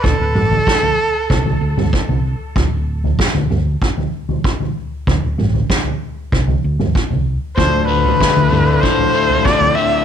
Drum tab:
SD |----o-----------|----o-----------|----o-----------|----o-----------|
T2 |--o--------o----|------o---------|--o--------o----|------o---------|
FT |o--o-o---o-o-o--|o--o-o---o-o-o--|o--o-o---o-o-o--|o--o-o---o-o-o--|
BD |o---o---o---o---|o---o---o---o---|o---o---o---o---|o---o---o---o---|